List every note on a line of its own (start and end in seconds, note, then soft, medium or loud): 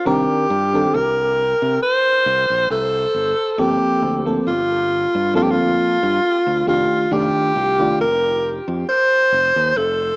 0.05 0.24 C2 loud
0.05 0.46 D#3 medium
0.05 0.46 C4 medium
0.05 0.46 D4 medium
0.05 0.96 G4 loud
0.05 0.46 A#4 loud
0.50 0.84 G2 medium
0.73 0.97 D#3 medium
0.73 0.97 C4 medium
0.73 0.97 D4 medium
0.73 0.98 A4 medium
0.94 1.53 C2 medium
0.94 1.82 A#4 loud
1.62 1.78 C3 medium
1.83 2.67 C5 loud
2.26 2.44 C2 medium
2.50 2.66 A#1 loud
2.70 3.05 C2 medium
2.70 3.52 A4 loud
3.14 3.33 G1 medium
3.52 3.61 A4 medium
3.58 3.77 G1 loud
3.58 4.21 F3 medium
3.58 4.21 A#3 medium
3.58 4.21 C4 medium
3.58 4.22 G4 loud
3.58 4.21 A4 medium
4.02 4.37 D2 medium
4.26 4.49 F3 medium
4.26 4.50 A#3 medium
4.26 4.50 C4 medium
4.26 4.50 A4 medium
4.47 5.06 G1 medium
4.47 5.31 F4 medium
5.15 5.59 G2 medium
5.34 5.97 F3 medium
5.34 5.97 A#3 medium
5.34 5.97 C4 medium
5.34 5.44 F4 medium
5.34 5.98 A4 loud
5.43 5.53 G4 medium
5.51 6.68 F4 loud
5.59 5.74 D2 medium
6.03 6.19 G2 medium
6.47 6.62 D2 medium
6.66 6.86 F1 medium
6.66 7.06 D#3 medium
6.66 7.07 A3 medium
6.66 7.07 D4 medium
6.66 7.15 F4 medium
6.66 7.07 G4 medium
7.11 7.30 F1 loud
7.11 7.51 D#3 loud
7.11 7.52 A3 medium
7.11 7.52 D4 medium
7.11 7.52 G4 loud
7.11 8.00 G4 loud
7.56 7.90 C2 medium
7.79 8.02 D#3 medium
7.79 8.03 A3 medium
7.79 8.03 D4 medium
7.79 8.03 F4 medium
8.00 8.59 F1 medium
8.00 8.59 A#4 loud
8.68 8.83 F2 medium
8.89 9.79 C5 loud
9.32 9.50 F1 medium
9.56 9.72 D#2 loud
9.76 10.11 F1 loud
9.76 10.16 A4 loud